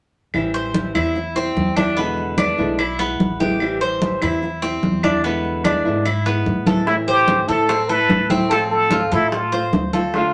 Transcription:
0.34 A1 E3 G3 C4 E4, high conga, claves
0.54 C5, high conga
0.74 E3 G3 C4 E4, high conga
0.95 E2 G3 C4 E4, high conga, claves
1.15 muted nylon-string guitar stroke, high conga
1.35 G3 C4 E4, high conga
1.56 E2, high conga
1.76 G3 C4 D4 E4, high conga, claves
1.97 B2 D3 G#3 B3 E4, high conga
2.18 high conga
2.38 D3 G#3 B3 D4 E4, high conga, claves
2.58 B1 D3 G#3 B3 E4
2.79 E4, muted nylon-string guitar stroke, high conga, claves
2.99 G#3 B3 E4, high conga
3.20 A1, high conga
3.40 D3 G#3 B3 E4 G4, high conga
3.60 E3 G3 C4 E4, high conga, claves
3.81 C5, high conga
4.01 E3 G3 C4 E4, high conga
4.22 E2 G3 C4 E4, high conga, claves
4.42 muted nylon-string guitar stroke, high conga
4.62 G3 C4 E4, high conga
4.83 E2, high conga
5.03 G3 C4 D4 E4, high conga, claves
5.24 B2 D3 G#3 B3 E4, high conga
5.45 high conga
5.64 D3 G#3 B3 D4 E4, high conga, claves
5.85 G#2 D3 G#3 B3 E4
6.05 E4, muted nylon-string guitar stroke, high conga, claves
6.26 G#3 B3 E4, high conga
6.46 A2, high conga
6.66 D3 G#3 B3 E4 A4, high conga
6.87 E3 A3 C4 E4, high bongo, high conga
7.08 G4 C5, high conga
7.27 E3 A3 C4 E4, high bongo, high conga
7.48 A2 A3 C4 E4 A4, high bongo, high conga
7.69 C4, muted nylon-string guitar stroke, high bongo, high conga
7.89 A3 C4 E4 A4 B4, high bongo, high conga
8.09 A2, high bongo, low bongo, high conga
8.30 A3 C4 E4, high bongo, high conga
8.49 F3 A3 C4 F4 A4, high bongo, high conga
8.70 A4, high conga
8.91 F3 A3 C4 F4, high bongo, high conga
9.12 A2 A3 C4 E4 F4 A4, high bongo
9.32 F4, muted nylon-string guitar stroke, high bongo, high conga
9.52 A3 C4 F4 C5, high bongo, high conga
9.73 D2, high bongo, low bongo, high conga
9.93 A3 C4 F4 A4, high bongo, high conga
10.14 D3 A3 D4 F4, high bongo, high conga

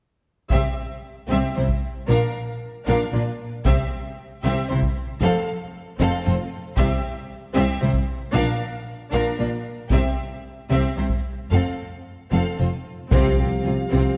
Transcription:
0.50 C2 C3 C4 G4 E5, taiko
1.28 C2 C3 C4 G4 E5
1.55 C2 C3 C4 E4 C5
1.69 taiko
2.08 A#1 A#2 D4 A#4 F5
2.86 A#1 A#2 D4 A#4 F5
3.13 A#1 A#2 D4 F4 D5
3.65 C2 C3 C4 G4 E5, taiko
4.44 C2 C3 C4 G4 E5
4.69 C2 C3 C4 E4 C5
4.82 taiko
5.22 F1 F2 C4 A4 F5
5.99 F1 F2 C4 A4 F5
6.25 F1 F2 C4 F4 C5
6.76 C2 C3 C4 G4 E5, taiko
7.54 C2 C3 C4 G4 E5
7.81 C2 C3 C4 E4 C5
7.93 taiko
8.33 A#1 A#2 D4 A#4 F5
9.12 A#1 A#2 D4 A#4 F5
9.38 A#1 A#2 D4 F4 D5
9.89 C2 C3 C4 G4 E5, taiko
10.70 C2 C3 C4 G4 E5
10.97 C2 C3 C4 E4 C5
11.10 taiko
11.51 F1 F2 C4 A4 F5
12.32 F1 F2 C4 A4 F5
12.58 F1 F2 C4 F4 C5
13.11 C2 C3 F3 C4 G4 F5, taiko
13.38 C2 C3 C4 G4
13.64 C2 C3 C4 F4
13.92 C2 C3 C4

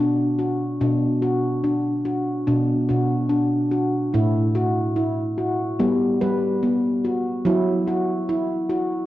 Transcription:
Already playing: B2 D4
0.39 F#4
0.81 B2 D4
1.22 F#4
1.64 D4
2.05 F#4
2.47 B2 D4
2.89 B2 F#4
3.29 D4
3.71 F#4
4.14 A2 E4
4.55 F#4
4.96 E4
5.38 F#4
5.79 G3 B3
6.21 G3 B4
6.63 B3
7.05 F#4
7.45 F#3 E4
7.88 F#4
8.29 E4
8.70 F#4

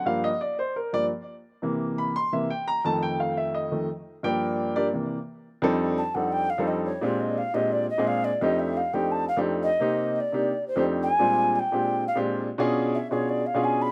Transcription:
0.05 G2 F3 A#3 F5
0.24 D#5
0.41 D5
0.59 C5
0.76 A#4
0.93 G2 F3 A#3 D5
1.62 C3 E3 A#3
1.98 B5
2.16 C6
2.32 C3 E3 A#3 E5
2.50 G5
2.68 A#5
2.85 F2 D#3 A3 A5
3.03 G5
3.20 F5
3.37 E5
3.54 D#5
3.71 F2 D#3 A3
4.23 G2 F3 A#3 G4 A#4 D5 G5
4.76 D4 G4 A#4 D5
4.93 C3 E3 A#3
5.62 F2 G3 C4 D4 D#4 A4
5.98 A5
6.15 F2 G3 C4 D4 D#4 A4 F#5
6.32 G5
6.50 F5
6.58 F2 G3 C4 D4 D#4 A4
6.68 D#5
6.85 C#5
7.01 A#2 G#3 C4 D4 F4 G4 D5
7.20 D#5
7.38 F5
7.54 A#2 G#3 C4 D4 F4 G4 D#5
7.72 D5
7.90 D#5
7.98 A#2 G#3 C4 D4 F4 G#4
8.07 F5
8.25 D5
8.41 F2 A3 C4 D4 D#4 G4 D#5
8.59 E5
8.77 F5
8.93 F2 A3 C4 D4 D#4 G4 G5
9.12 A5
9.28 F5
9.37 F2 A3 C4 D4 D#4 G4
9.63 D#5
9.80 C3 A#3 C4 D#4 G4
10.16 D#5
10.20 D5
10.32 C3 A#3 D4 D#4 G4
10.68 C5
10.76 F2 A3 C4 D4 D#4 G4
11.03 G#5
11.19 A#2 G3 G#3 C4 D4 F4
11.56 G5 G#5
11.72 A#2 G#3 C4 D4 F4 G4
12.08 F5
12.15 A#2 G#3 C4 D4 F4 G4
12.58 B2 C#4 D4 F4 G#4
12.95 E5
13.11 B2 C#4 D4 F4 G#4 C#5
13.29 D5
13.47 F5
13.54 B2 C#4 D4 F4 G#4
13.64 G#5
13.82 B5

